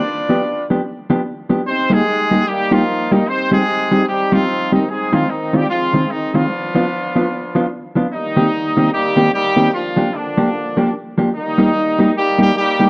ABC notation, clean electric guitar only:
X:1
M:4/4
L:1/8
Q:"Swing" 1/4=149
K:Cm
V:1 name="Clean electric guitar"
z [F,=B,DG] z [F,B,DG] z [F,B,DG] z [F,B,DG] | z [G,B,EG] z [G,B,EG] z [G,B,EG] z [G,B,EG] | z [G,CEG] z [G,CEG] z [G,CEG] z [G,CEG] | z [E,A,CF] z [E,A,CF] z [E,A,CF] z [E,A,CF] |
z [F,=B,DF] z [F,B,DF] z [F,B,DF] z [F,B,DF] | z [E,B,CG] z [E,B,CG] z [E,B,CG] z [E,B,CG] | z [F,B,DG] z [F,B,DG] z [F,B,DG] z [F,B,DG] | z [G,B,EG] z [G,B,EG] z [G,B,EG] z [G,B,EG] |]